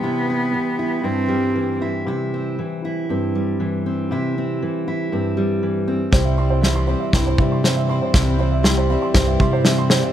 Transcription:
<<
  \new Staff \with { instrumentName = "Upright piano" } { \time 4/4 \key c \major \tempo 4 = 118 r1 | r1 | r1 | c''16 e''16 c'''16 c''16 e''16 c'''16 c''16 e''16 c'''16 c''16 e''16 c'''16 c''16 e''16 c'''16 c''16 |
e''8 c''16 e''16 c'''16 c''16 e''16 c'''16 c''16 e''16 c'''16 c''16 e''16 c'''16 c''16 e''16 | }
  \new Staff \with { instrumentName = "Twelve-string acoustic guitar" } { \time 4/4 \key c \major r1 | r1 | r1 | <c e g c' e'>8 <g c' e'>8 <e g c' e'>8 <g c' e'>8 <c e g c' e'>8 <g c' e'>8 <e g c' e'>8 <g c' e'>8 |
<c e g c' e'>8 <g c' e'>8 <e g c' e'>8 <g c' e'>8 <c e g c' e'>8 <g c' e'>8 <e g c' e'>8 <g c' e'>8 | }
  \new Staff \with { instrumentName = "Cello" } { \time 4/4 \key c \major b2 c'4. r8 | r1 | r1 | r1 |
r1 | }
  \new Staff \with { instrumentName = "Steel-string acoustic guitar" } { \clef bass \time 4/4 \key c \major << { <g e'>8 e'4 e'8 e'8 g4 e'8 | e'8 c'4 e'8 c'8 g4 c'8 | e'8 c'4 e'8 c'8 g4 c'8 | r8 c'8 g8 c'4 g8 c'4 |
r8 c'8 g8 c'4 g8 c'4 | } \\ { c4 e4 g,4 e4 | c4 e4 g,4 e4 | c4 e4 g,4 e4 | c4 e4 g,4 e4 |
c4 e4 g,4 e4 | } >> }
  \new Staff \with { instrumentName = "Fingered electric bass" } { \clef bass \time 4/4 \key c \major r1 | r1 | r1 | c,2 c,8 c4. |
c,2 c,8 c4. | }
  \new DrumStaff \with { instrumentName = "Drums" } \drummode { \time 4/4 r4 r4 r4 r4 | r4 r4 r4 r4 | r4 r4 r4 r4 | <bd sn>4 sn4 <bd sn>8 bd8 sn4 |
<bd sn>4 sn4 <bd sn>8 bd8 sn8 sn8 | }
>>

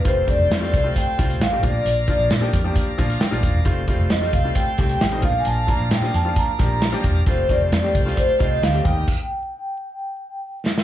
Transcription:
<<
  \new Staff \with { instrumentName = "Vibraphone" } { \time 4/4 \key f \major \tempo 4 = 133 c''8 d''4. g''4 f''8 d''8 | d''4 r2. | r4 ees''8 f''8 g''8 g''4 f''16. aes''32 | a''8 bes''8 g''8 a''8 bes''4. r8 |
c''8 d''4. c''8 ees''8 f''8 g''8~ | g''2. r4 | }
  \new Staff \with { instrumentName = "Tonewheel organ" } { \time 4/4 \key f \major << { <a' c'' g''>2.~ <a' c'' g''>8 <bes' d'' bes''>8~ | <bes' d'' bes''>1 | <a' c'' g''>2.~ <a' c'' g''>8 <bes' d'' bes''>8~ | <bes' d'' bes''>1 |
<c'' f'' a''>2.~ <c'' f'' a''>8 <bes' ees'' bes''>8 | r1 | } \\ { f'1~ | f'1~ | f'1~ | f'1 |
g'1 | r1 | } >> }
  \new Staff \with { instrumentName = "Upright piano" } { \time 4/4 \key f \major r1 | r2. g''8 f''8 | r1 | r1 |
r1 | r1 | }
  \new Staff \with { instrumentName = "Upright piano" } { \time 4/4 \key f \major <g a c' f'>16 r16 <g a c' d'>8 r16 <g a c' f'>16 r16 <g a c' f'>8 r16 <g a c' f'>8 r16 <g a c' g'>16 <f bes d' f'>8~ | <f bes d' f'>16 r16 <f bes d' f'>8 r16 <f bes d' g'>16 r16 <f bes d' g'>8 r16 <f bes d' f'>8 r16 <f bes d' f'>8 r16 | <g a c' f'>16 r16 <g a c' f'>8 r16 <g a c' f'>16 r16 <g a c' f'>8 r16 <g a c' g'>8 r16 <g a c' ees'>16 <f bes d' f'>8~ | <f bes d' f'>16 r16 <f bes d' f'>8 r16 <f bes d' f'>16 r16 <f bes d' f'>8 r16 <f bes d' g'>8 r16 <f bes d' g'>8 r16 |
<g a c' f'>16 r16 <g a c' f'>8 r16 <g a c' g'>16 r16 <g a c' f'>8 r16 <g a c' f'>8 r16 <g a c' g'>16 <g bes ees' g'>8 | r1 | }
  \new Staff \with { instrumentName = "Fingered electric bass" } { \clef bass \time 4/4 \key f \major f,,8. f,,16 f,8 c,8 r8 c,8 a,,8 bes,,8 | bes,,8. bes,,16 bes,8 f,8 r8 bes,,8 r16 bes,,16 ees,,16 e,,16 | f,,8. f,,16 f,8 c,8 r8 c,8 a,,8 bes,,8 | bes,,8. bes,,16 bes,8 f,8 r8 bes,,4 e,,8 |
f,,8. f,,16 f,8 c,8 r8 c,8 d,8 ees,8 | r1 | }
  \new DrumStaff \with { instrumentName = "Drums" } \drummode { \time 4/4 <hh bd>8 <hh bd>8 <hh sn>16 sn16 <hh bd>8 <hh bd>8 <hh bd>16 hh16 <hh sn>8 <hh bd>8 | hh8 <hh bd>8 <hh sn>16 sn16 <hh bd>8 <hh bd>8 <hh bd sn>16 hh16 <hh sn>16 hh16 <hh bd>8 | <hh bd>8 <hh bd>8 <hh sn>16 sn16 <hh bd>8 <hh bd>8 <hh bd sn>16 hh16 <hh sn>16 hh16 <hh bd>8 | hh8 <hh bd>8 <hh sn>16 sn16 hh8 <hh bd>8 <hh bd sn>8 <hh sn>16 hh16 <hh bd>8 |
<hh bd>8 <hh bd>8 <hh sn>16 sn16 <hh bd>16 sn16 <hh bd>8 <hh bd>8 <hh sn>16 hh16 <hh bd>8 | <cymc bd>4 r4 r4 r8 sn16 sn16 | }
>>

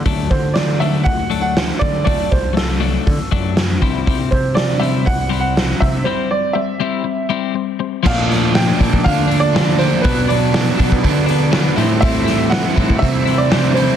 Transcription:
<<
  \new Staff \with { instrumentName = "Upright piano" } { \time 4/4 \key d \mixolydian \tempo 4 = 120 r8 c''8 d''8 e''8 fis''8. fis''8. d''8 | d''8 c''8 a'4. r4. | r8 c''8 d''8 e''8 fis''8. fis''8. e''8 | c''8 d''8 e''4. r4. |
f''4 g''4 f''8. d''8. c''8 | b'8 d''2 r4. | e''4 fis''4 e''8. d''8. c''8 | }
  \new Staff \with { instrumentName = "Clean electric guitar" } { \time 4/4 \key d \mixolydian <fis a d'>8 <fis a>8 <fis a>8 <fis a d'>8 <fis a>8 <fis a d'>8 <fis a>8 <fis a>8 | <fis a d'>8 <fis a>8 <fis a>8 <fis a d'>8 <fis a>8 <fis a d'>8 a8 <g c' e'>8 | <g c' e'>8 <g c'>8 <g c'>8 <g c' e'>8 <g c'>8 <g c' e'>8 c'8 <g c'>8 | <g c' e'>8 <g c'>8 <g c'>8 <g c' e'>8 <g c'>8 <g c' e'>8 <g c'>8 <g c'>8 |
<f a d'>8 <f a d'>4 <a d'>4 <a d'>8 <f a d'>8 <a d'>8 | <fis b d'>8 <fis b d'>4 <b d'>4 <b d'>8 <fis b d'>8 <g c' e'>8 | <g c' e'>8 <g c' e'>4 <c' e'>4 <c' e'>8 <g c' e'>8 <c' e'>8 | }
  \new Staff \with { instrumentName = "Overdriven electric guitar" } { \time 4/4 \key d \mixolydian r1 | r1 | r1 | r1 |
<bes, f d'>4 <bes, f d'>8 <f d'>8 <bes, f d'>4 <bes, f d'>8 <f bes d'>8 | <b, fis b d'>4 <b, fis b d'>8 <fis b d'>8 <b, fis b d'>4 <b, fis b d'>8 <a, e a c' e'>8 | <a, e a c' e'>4 <a, e a c' e'>8 <a c' e'>8 <e a c' e'>4 <e a c' e'>8 <a c' e'>8 | }
  \new Staff \with { instrumentName = "Picked electric bass" } { \clef bass \time 4/4 \key d \mixolydian d,8 d4. d,4. d8 | d,16 r16 c,4. d16 r16 fis,4 c,8 | c,8 c4. c,4. c8 | r1 |
bes,4. bes,16 bes,16 d2 | b,4. b,16 b,16 d4. a,8~ | a,4. a,16 a,16 c2 | }
  \new DrumStaff \with { instrumentName = "Drums" } \drummode { \time 4/4 <hho bd>8 <hho bd>8 <hho sn>8 hho8 <hho bd>8 hho8 <hho sn>8 <hho bd>8 | <hho bd>8 <hho bd>8 <hho sn>8 hho8 <hho bd>8 <hho bd>8 <hho sn>8 <hho bd>8 | <hho bd>8 <hho bd>8 <hho sn>8 hho8 <hho bd>8 hho8 <hho sn>8 <hho bd>8 | r4 r4 r4 r4 |
<cymc bd>8 <hho sn>8 <hho sn>8 <hho bd>16 bd16 <hho bd>8 hho8 <hho sn>8 hho8 | <hho bd>8 hho8 <hho sn>8 <hho bd>16 bd16 <hho bd>8 hho8 <hho sn>8 hho8 | <hho bd>8 <hho sn>8 <hho sn>8 <hho bd>16 bd16 <hho bd>8 hho8 <hho sn>8 hho8 | }
>>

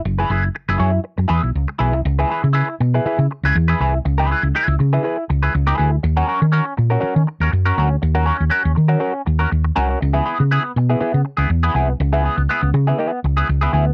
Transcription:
<<
  \new Staff \with { instrumentName = "Clean electric guitar" } { \time 4/4 \key cis \dorian \tempo 4 = 121 r16 <e' gis' b'>16 <e' gis' b'>16 r8 <e' gis' b'>16 <e' gis' cis''>8 r8 <e' gis' b'>8 r8 <e' gis' b'>8 | r16 <e' gis' b'>16 <e' gis' b'>16 r16 <e' gis' b'>8 r16 <e' gis' b'>16 <e' gis' b'>8 r16 <e' gis' b'>16 r16 <e' gis' b'>16 <e' gis' b'>16 r16 | r16 <e' gis' b'>16 <e' gis' b'>16 r16 <e' gis' b'>8 r16 <e' gis' b'>16 <e' gis' b'>8 r16 <e' gis' b'>16 r16 <e' gis' b'>16 <e' gis' b'>16 r16 | r16 <cis' fis' ais'>16 <cis' fis' ais'>16 r16 <cis' fis' ais'>8 r16 <cis' fis' ais'>16 <cis' fis' ais'>8 r16 <cis' fis' ais'>16 r16 <cis' fis' ais'>16 <cis' fis' ais'>16 r16 |
r16 <cis' fis' ais'>16 <cis' fis' ais'>16 r16 <cis' fis' ais'>8 r16 <cis' fis' ais'>16 <cis' fis' ais'>8 r16 <cis' fis' ais'>16 r8 <cis' fis' ais'>16 <cis' fis' ais'>16 | r16 <b e' gis'>16 <b e' gis'>16 r16 <b e' gis'>8 r16 <b e' gis'>16 <b e' gis'>8 r16 <b e' gis'>16 r16 <b e' gis'>16 <b e' gis'>16 r16 | r16 <b e' gis'>16 <b e' gis'>16 r16 <b e' gis'>8 r16 <b e' gis'>16 <b e' gis'>8 r16 <b e' gis'>16 r16 <b e' gis'>16 <b e' gis'>16 r16 | }
  \new Staff \with { instrumentName = "Fingered electric bass" } { \clef bass \time 4/4 \key cis \dorian fis,,8 fis,,8 r16 fis,,16 fis,8 r16 fis,16 e,16 b,,16 cis,16 r16 b,,16 bis,,16 | cis,8 r16 cis8 r16 b,8 r16 cis16 r16 cis,16 e,8 bis,,8 | cis,8. cis,16 r16 cis,16 cis8 r8 cis,8 cis,8 d,8 | dis,8 r16 dis8 r16 ais,8 r16 dis16 r16 dis,16 fis,8 d,8 |
dis,8. dis,16 r16 dis,16 dis8 r8 dis,8 dis,8 bis,,8 | cis,8 r16 cis8 r16 b,8 r16 cis16 r16 cis,16 e,8 bis,,8 | cis,8. cis,16 r16 cis,16 cis8 r8 cis,8 cis,8 d,8 | }
>>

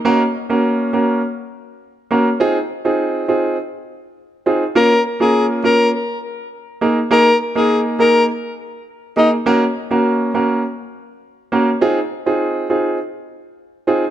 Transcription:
<<
  \new Staff \with { instrumentName = "Alto saxophone" } { \time 4/4 \key ges \lydian \tempo 4 = 102 r1 | r1 | bes'8 r16 aes'8 r16 bes'8 r2 | bes'8 r16 aes'8 r16 bes'8 r4. ees'16 r16 |
r1 | r1 | }
  \new Staff \with { instrumentName = "Grand piano" } { \time 4/4 \key ges \lydian <bes des' ges' bes'>16 r8 <bes des' ges' bes'>8. <bes des' ges' bes'>8 r4. <bes des' ges' bes'>16 r16 | <c' ees' f' aes'>16 r8 <c' ees' f' aes'>8. <c' ees' f' aes'>8 r4. <c' ees' f' aes'>16 r16 | <bes des' f' bes'>16 r8 <bes des' f' bes'>8. <bes des' f' bes'>8 r4. <bes ees' aes' bes'>16 r16 | <bes ees' aes' bes'>16 r8 <bes ees' aes' bes'>8. <bes ees' aes' bes'>8 r4. <bes ees' aes' bes'>16 r16 |
<bes des' ges' bes'>16 r8 <bes des' ges' bes'>8. <bes des' ges' bes'>8 r4. <bes des' ges' bes'>16 r16 | <c' ees' f' aes'>16 r8 <c' ees' f' aes'>8. <c' ees' f' aes'>8 r4. <c' ees' f' aes'>16 r16 | }
>>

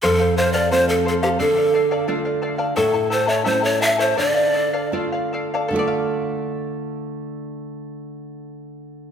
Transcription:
<<
  \new Staff \with { instrumentName = "Charango" } { \time 2/4 \key d \minor \tempo 4 = 82 <a' c'' f''>16 <c'' f''>16 <a' c'' f''>16 <a' c'' f''>16 <a' c'' f''>16 <c'' f''>16 <a' c'' f''>16 <a' c'' f''>16 | <a' d'' f''>16 <d'' f''>16 <a' d'' f''>16 <a' d'' f''>16 <a' d'' f''>16 <d'' f''>16 <a' d'' f''>16 <a' d'' f''>16 | <e' a' cis'' e'' a''>16 <e' a' a''>16 <e' a' e'' a''>16 <e' a' cis'' e'' a''>16 <e' a' e'' a''>16 <e' a' a''>16 <e' a' e'' a''>16 <e' a' cis'' e'' a''>16 | <a' d'' f''>16 <d'' f''>16 <a' d'' f''>16 <a' d'' f''>16 <a' d'' f''>16 <d'' f''>16 <a' d'' f''>16 <a' d'' f''>16 |
<a' d'' f''>2~ | <a' d'' f''>2 | }
  \new Staff \with { instrumentName = "Pan flute" } { \time 2/4 \key d \minor a'8 c''16 d''16 c''16 a'16 a'16 g'16 | a'4 r4 | a'8 c''16 cis''16 c''16 cis''16 e''16 c''16 | d''4 r4 |
r2 | r2 | }
  \new Staff \with { instrumentName = "Nylon-string guitar" } { \time 2/4 \key d \minor f,4 <f a c'>4 | d4 <a d' f'>4 | a,4 <a cis' e'>4 | d4 <a d' f'>4 |
<d a f' d'' a''>2~ | <d a f' d'' a''>2 | }
>>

